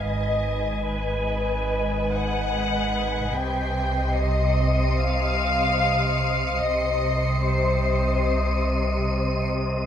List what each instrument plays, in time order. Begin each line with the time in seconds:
0.04 sub bass G#1, double bass section G#1, cello section G#2, synth texture B4 D#5 G#5, violin section D#5
0.88 violin section B4
2.12 violin section F#5
3.33 sub bass C2, double bass section C2, cello section C3, synth texture C5 D#5 D#6, violin section G5 C7
4.15 violin section D#5 C#7
4.99 violin section F5
6.61 sub bass C2, double bass section C2, cello section C3, synth texture C5 D#5 D#6, violin section D#5
7.45 violin section C5